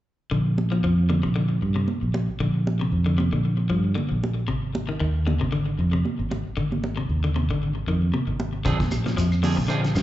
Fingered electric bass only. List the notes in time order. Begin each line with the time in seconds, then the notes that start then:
0.32 A#1
0.84 F2
1.25 A#1
1.62 G2
2.03 A#1
2.40 A#1
2.92 F2
3.33 A#1
3.70 G2
4.11 A#1
4.48 G#1
5.01 D#2
5.41 G#1
5.79 F2
6.19 G#1
6.57 G#1
7.09 D#2
7.49 G#1
7.87 F2
8.27 G#1
8.66 A#1
9.17 F2
9.58 A#1
9.95 G2